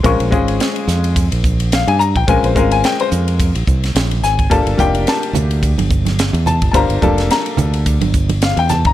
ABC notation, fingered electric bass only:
X:1
M:4/4
L:1/16
Q:"Swing 16ths" 1/4=108
K:Gdor
V:1 name="Fingered electric bass" clef=bass
B,,, B,,, _A,,,2 z2 F,,3 B,,,4 G,,2 B,,, | B,,, B,,, _A,,,2 z2 F,,3 B,,, C,,2 B,,,2 A,,,2 | G,,, G,,, F,,,2 z2 D,,3 G,,,4 E,,2 G,,, | G,,, G,,, F,,,2 z2 D,,3 G,,,4 E,,2 G,,, |]